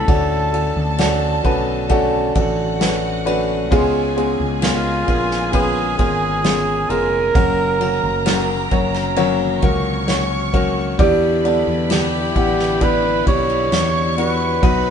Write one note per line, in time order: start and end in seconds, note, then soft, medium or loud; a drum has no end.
0.00 0.08 C#4 medium
0.00 1.45 A4 loud
0.00 0.10 C#5 medium
0.08 0.72 D2 loud
0.08 1.41 A2 medium
0.08 0.51 A3 medium
0.08 0.51 C#4 medium
0.08 0.51 D4 medium
0.08 0.52 F#4 medium
0.08 2.31 A4 medium
0.08 0.52 A4 loud
0.08 2.31 A5 medium
0.08 kick loud
0.08 ride medium
0.53 0.96 A3 medium
0.53 0.97 C#4 medium
0.53 0.97 D4 medium
0.53 0.97 F#4 medium
0.53 0.97 A4 medium
0.53 ride medium
0.76 1.40 D2 loud
0.98 1.42 A3 medium
0.98 1.42 C#4 medium
0.98 1.42 D4 medium
0.98 1.42 F#4 medium
0.98 1.42 A4 loud
0.98 snare loud
0.98 ride medium
1.44 2.32 B1 medium
1.44 1.87 A3 medium
1.44 1.87 C#4 medium
1.44 1.88 D4 medium
1.44 1.88 F#4 medium
1.44 1.88 B4 loud
1.44 kick medium
1.44 ride medium
1.89 2.33 A3 loud
1.89 2.33 C#4 loud
1.89 2.33 D4 loud
1.89 2.33 F#4 loud
1.89 2.33 A4 loud
1.89 kick medium
1.89 ride medium
2.35 3.72 A1 loud
2.35 2.78 A3 medium
2.35 2.79 C#4 medium
2.35 2.79 D4 medium
2.35 2.79 F#4 medium
2.35 3.69 F#4 medium
2.35 2.79 A4 loud
2.35 3.69 F#5 medium
2.35 kick medium
2.35 ride medium
2.80 3.23 A3 medium
2.80 3.24 C#4 medium
2.80 3.24 D4 medium
2.80 3.24 F#4 medium
2.80 3.24 B4 medium
2.80 snare loud
2.80 ride medium
3.25 3.69 A3 loud
3.25 3.69 C#4 medium
3.25 3.69 D4 medium
3.25 3.69 F#4 medium
3.25 3.69 B4 loud
3.25 ride medium
3.71 4.36 C#2 loud
3.71 5.04 G#2 medium
3.71 4.14 G#3 loud
3.71 4.15 B3 loud
3.71 4.15 C#4 loud
3.71 4.15 F4 loud
3.71 4.15 G#4 loud
3.71 7.32 G#4 medium
3.71 7.32 G#5 medium
3.71 kick loud
3.71 ride medium
4.16 4.60 G#3 medium
4.16 4.60 B3 medium
4.16 4.60 C#4 medium
4.16 4.60 F4 medium
4.16 4.60 G#4 loud
4.16 ride medium
4.40 5.04 C#2 medium
4.62 5.05 G#3 medium
4.62 5.06 B3 medium
4.62 5.06 C#4 medium
4.62 5.49 F4 medium
4.62 5.06 F4 medium
4.62 5.06 A#4 medium
4.62 snare loud
4.62 ride medium
5.07 5.95 A#1 medium
5.07 5.51 G#3 medium
5.07 5.51 B3 medium
5.07 5.51 C#4 medium
5.07 5.51 F4 medium
5.07 5.51 A#4 medium
5.07 kick medium
5.07 ride medium
5.31 snare soft
5.52 5.96 G#3 medium
5.52 5.96 B3 medium
5.52 5.96 C#4 medium
5.52 5.96 F4 medium
5.52 5.96 G#4 loud
5.52 5.97 B4 loud
5.52 kick medium
5.52 ride medium
5.98 6.86 G#1 loud
5.98 6.42 G#3 medium
5.98 6.42 B3 medium
5.98 6.42 C#4 medium
5.98 6.42 F4 medium
5.98 6.91 G#4 medium
5.98 6.42 A#4 medium
5.98 kick medium
5.98 ride medium
6.43 6.87 G#3 medium
6.43 6.87 B3 medium
6.43 6.87 C#4 medium
6.43 6.88 F4 medium
6.43 6.88 G#4 medium
6.43 snare loud
6.43 ride medium
6.89 7.32 F1 medium
6.89 7.33 G#3 medium
6.89 7.33 B3 medium
6.89 7.33 C#4 medium
6.89 7.33 F4 medium
6.89 7.33 G#4 medium
6.89 8.72 A#4 loud
6.89 ride medium
7.34 7.99 F#1 loud
7.34 8.68 C#3 medium
7.34 7.78 F#3 loud
7.34 7.78 A#3 medium
7.34 7.78 C#4 medium
7.34 7.79 F#4 medium
7.34 9.59 A#4 medium
7.34 7.79 A#4 loud
7.34 9.58 A#5 loud
7.34 kick loud
7.34 ride medium
7.80 8.23 F#3 medium
7.80 8.24 A#3 medium
7.80 8.24 C#4 medium
7.80 8.24 F#4 medium
7.80 8.24 A#4 medium
7.80 ride medium
8.03 8.68 F#1 loud
8.25 8.69 F#3 medium
8.25 8.69 A#3 medium
8.25 8.69 C#4 medium
8.25 8.69 F#4 medium
8.25 8.70 A#4 loud
8.25 snare loud
8.25 ride loud
8.71 9.59 F#1 medium
8.71 9.15 F#3 medium
8.71 9.15 A#3 medium
8.71 9.15 C#4 medium
8.71 9.15 F#4 medium
8.71 9.15 C#5 loud
8.71 kick medium
8.71 ride medium
8.94 snare soft
8.94 ride soft
9.16 9.60 F#3 loud
9.16 9.60 A#3 loud
9.16 9.60 C#4 loud
9.16 9.60 F#4 loud
9.16 9.61 C#5 loud
9.16 ride medium
9.62 10.95 C#2 medium
9.62 10.05 F#3 medium
9.62 10.06 A#3 medium
9.62 10.06 C#4 medium
9.62 10.06 F#4 medium
9.62 10.06 A#4 loud
9.62 10.96 C#5 medium
9.62 10.96 C#6 medium
9.62 kick loud
9.62 ride medium
10.07 10.51 F#3 medium
10.07 10.51 A#3 medium
10.07 10.51 C#4 medium
10.07 10.51 F#4 medium
10.07 10.52 C#5 medium
10.07 snare loud
10.07 ride medium
10.53 10.96 F#3 medium
10.53 10.97 A#3 medium
10.53 10.97 C#4 medium
10.53 10.97 F#4 medium
10.53 10.97 A#4 loud
10.53 kick medium
10.53 ride medium
10.99 11.63 E2 medium
10.99 12.31 B2 medium
10.99 11.42 G3 loud
10.99 11.42 B3 loud
10.99 11.42 D4 loud
10.99 11.42 E4 loud
10.99 11.43 G4 loud
10.99 13.68 B4 medium
10.99 13.68 B5 medium
10.99 kick loud
10.99 ride medium
11.44 11.88 G3 medium
11.44 11.88 B3 medium
11.44 11.88 D4 medium
11.44 11.88 E4 medium
11.44 11.88 A4 medium
11.44 ride medium
11.67 12.31 E2 medium
11.89 12.33 G3 medium
11.89 12.33 B3 medium
11.89 12.33 D4 medium
11.89 12.33 E4 medium
11.89 12.34 G4 medium
11.89 12.85 G4 medium
11.89 snare loud
11.89 ride medium
12.35 13.22 A1 loud
12.35 12.79 G3 medium
12.35 12.79 B3 medium
12.35 12.79 D4 medium
12.35 12.79 E4 medium
12.35 12.79 F#5 medium
12.35 kick medium
12.35 ride medium
12.59 snare soft
12.81 13.24 G3 loud
12.81 13.24 B3 medium
12.81 13.24 D4 medium
12.81 13.24 E4 medium
12.81 13.25 G4 medium
12.81 13.27 B4 loud
12.81 kick medium
12.81 ride medium
13.26 13.69 B1 loud
13.26 13.69 G3 medium
13.26 13.69 B3 medium
13.26 13.70 D4 medium
13.26 13.70 E4 medium
13.26 13.70 G4 medium
13.26 14.14 C#5 loud
13.26 kick medium
13.26 ride medium
13.50 ride soft
13.72 14.59 E2 loud
13.72 14.15 G3 medium
13.72 14.15 B3 medium
13.72 14.15 D4 medium
13.72 14.15 E4 medium
13.72 14.15 G4 medium
13.72 14.61 C#5 medium
13.72 14.61 C#6 medium
13.72 snare loud
13.72 ride medium
14.17 14.60 G3 medium
14.17 14.60 B3 medium
14.17 14.60 D4 medium
14.17 14.61 E4 medium
14.17 14.61 F#4 medium
14.17 14.90 B4 loud
14.17 ride medium
14.62 14.90 B1 loud
14.62 14.90 D#3 medium
14.62 14.90 F#3 loud
14.62 14.90 B3 medium
14.62 14.90 D#4 medium
14.62 14.90 F#4 medium
14.62 14.90 B4 medium
14.62 14.90 B4 loud
14.62 14.90 B5 medium
14.62 kick loud
14.62 ride medium